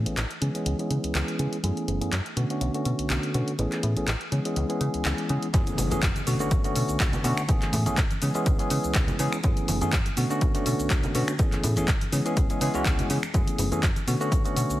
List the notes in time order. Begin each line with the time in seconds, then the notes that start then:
0.05 A1 E3 A3 B3 C#4 G#4, closed hi-hat
0.17 A1, clap, closed hi-hat
0.31 closed hi-hat
0.41 C#3 E3 G#3 B3 C#4 G#4, closed hi-hat
0.54 E3 G#3 B3 C#4 G#4, closed hi-hat
0.66 C#2, closed hi-hat
0.78 E3 G#3 B3 C#4 G#4, closed hi-hat
0.90 C#3, closed hi-hat
1.04 C#2, closed hi-hat
1.15 C#2, clap, closed hi-hat
1.28 closed hi-hat
1.39 C#3 E3 G#3 B3 C#4 G#4, closed hi-hat
1.53 closed hi-hat
1.63 F#2 E3 A3 B3 C#4 G#4, closed hi-hat
1.77 closed hi-hat
1.88 F#1, closed hi-hat
2.01 F#2 E3 A3 B3 C#4 G#4, closed hi-hat
2.12 F#2, clap, closed hi-hat
2.26 closed hi-hat
2.36 B2 D3 A3 B3 C#4 F#4, closed hi-hat
2.50 D3 A3 B3 C#4 F#4, closed hi-hat
2.61 B1, closed hi-hat
2.74 D3 A3 B3 C#4 F#4, closed hi-hat
2.85 B2, closed hi-hat
2.99 B1, closed hi-hat
3.10 B1, clap, closed hi-hat
3.23 closed hi-hat
3.34 B2 D3 A3 B3 C#4 F#4, closed hi-hat
3.48 closed hi-hat
3.58 A1 E3 A3 B3 C#4 G#4, closed hi-hat
3.72 clap, closed hi-hat
3.83 A2, closed hi-hat
3.96 A1 E3 A3 B3 C#4 G#4, closed hi-hat
4.08 A1, clap, closed hi-hat
4.21 closed hi-hat
4.32 C#3 E3 G#3 B3 C#4 G#4, closed hi-hat
4.45 E3 G#3 B3 C#4 G#4, closed hi-hat
4.56 C#2, closed hi-hat
4.69 E3 G#3 B3 C#4 G#4, closed hi-hat
4.81 C#3, closed hi-hat
4.94 C#2, closed hi-hat
5.05 C#2, clap, closed hi-hat
5.18 closed hi-hat
5.29 C#3 E3 G#3 B3 C#4 G#4, closed hi-hat
5.43 closed hi-hat
5.53 F#2 E3 A3 B3 C#4 G#4, kick, closed hi-hat, impact, maracas, shaker
5.66 closed hi-hat, high conga, maracas, shaker
5.78 F#1, open hi-hat, high conga, low conga, shaker
5.91 F#2 E3 A3 B3 C#4 G#4, closed hi-hat, high conga, maracas, shaker
6.02 F#2, kick, clap, closed hi-hat, maracas, shaker
6.15 closed hi-hat, high conga, maracas, shaker
6.26 B2 D3 A3 B3 C#4 F#4, open hi-hat, shaker
6.39 D3 A3 B3 C#4 F#4, maracas, shaker
6.51 B1, kick, closed hi-hat, maracas, shaker
6.64 D3 A3 B3 C#4 F#4, closed hi-hat, maracas, shaker
6.76 B2, open hi-hat, shaker
6.88 B1, maracas, shaker
7.00 B1, kick, clap, closed hi-hat, shaker
7.13 closed hi-hat, low conga, maracas, shaker
7.24 B2 D3 A3 B3 C#4 F#4, open hi-hat, shaker
7.37 finger snap, maracas, shaker
7.48 A1 E3 A3 B3 C#4 G#4, kick, closed hi-hat, maracas, shaker
7.61 clap, closed hi-hat, high conga, maracas, shaker
7.73 A2, open hi-hat, high conga, low conga, shaker
7.86 A1 E3 A3 B3 C#4 G#4, closed hi-hat, high conga, maracas, shaker
7.97 A1, kick, clap, closed hi-hat, maracas, shaker
8.11 closed hi-hat, high conga, maracas, shaker
8.21 C#3 E3 G#3 B3 C#4 G#4, open hi-hat, shaker
8.34 E3 G#3 B3 C#4 G#4, maracas, shaker
8.46 C#2, kick, closed hi-hat, shaker, maracas
8.58 E3 G#3 B3 C#4 G#4, closed hi-hat, shaker, maracas
8.70 C#3, open hi-hat, shaker
8.83 C#2, maracas, shaker
8.95 C#2, kick, clap, closed hi-hat, shaker, maracas
9.08 closed hi-hat, low conga, maracas, shaker
9.19 C#3 E3 G#3 B3 C#4 G#4, open hi-hat, shaker
9.33 finger snap, shaker, maracas
9.43 F#2 E3 A3 B3 C#4 G#4, kick, closed hi-hat, maracas, shaker
9.56 closed hi-hat, high conga, maracas, shaker
9.68 F#1, open hi-hat, high conga, low conga, shaker
9.81 F#2 E3 A3 B3 C#4 G#4, closed hi-hat, high conga, maracas, shaker
9.92 F#2, kick, clap, closed hi-hat, maracas, shaker
10.06 closed hi-hat, high conga, maracas, shaker
10.17 B2 D3 A3 B3 C#4 F#4, open hi-hat, shaker
10.30 D3 A3 B3 C#4 F#4, maracas, shaker
10.41 B1, kick, closed hi-hat, maracas, shaker
10.54 D3 A3 B3 C#4 F#4, closed hi-hat, maracas, shaker
10.66 B2, open hi-hat, shaker
10.79 B1, maracas, shaker
10.90 B1, kick, clap, closed hi-hat, maracas, shaker
11.03 closed hi-hat, low conga, maracas, shaker
11.14 B2 D3 A3 B3 C#4 F#4, open hi-hat, shaker
11.27 finger snap, maracas, shaker
11.39 A1 E3 A3 B3 C#4 G#4, kick, closed hi-hat, maracas, shaker
11.52 clap, closed hi-hat, high conga, maracas, shaker
11.63 A2, open hi-hat, high conga, low conga, shaker
11.76 A1 E3 A3 B3 C#4 G#4, closed hi-hat, high conga, maracas, shaker
11.88 A1, kick, clap, closed hi-hat, maracas, shaker
12.01 closed hi-hat, high conga, maracas, shaker
12.12 C#3 E3 G#3 B3 C#4 G#4, open hi-hat, shaker
12.25 E3 G#3 B3 C#4 G#4, closed hi-hat, maracas, shaker
12.37 C#2, kick, closed hi-hat, maracas, shaker
12.50 E3 G#3 B3 C#4 G#4, closed hi-hat, maracas, shaker
12.61 C#3 E3 G#3 B3 C#4 G#4, open hi-hat, shaker
12.74 C#2 E3 G#3 B3 C#4 F#4, maracas, shaker
12.86 C#2, kick, clap, closed hi-hat, maracas, shaker
12.99 closed hi-hat, low conga, maracas, shaker
13.09 C#3 E3 G#3 B3 C#4 G#4, open hi-hat, shaker
13.23 finger snap, maracas, shaker
13.34 F#2 E3 A3 B3 C#4 G#4, kick, closed hi-hat, maracas, shaker
13.47 closed hi-hat, high conga, maracas, shaker
13.58 F#1, open hi-hat, high conga, low conga, shaker
13.71 F#2 E3 A3 B3 C#4 G#4, closed hi-hat, high conga, maracas, shaker
13.83 F#2, kick, clap, closed hi-hat, maracas, shaker
13.96 closed hi-hat, high conga, maracas, shaker
14.07 B2 D3 A3 B3 C#4 F#4, open hi-hat, shaker
14.20 D3 A3 B3 C#4 F#4, maracas, shaker
14.32 B1, kick, closed hi-hat, maracas, shaker
14.44 D3 A3 B3 C#4 F#4, closed hi-hat, maracas, shaker
14.56 B2, open hi-hat, shaker
14.70 B1, maracas, shaker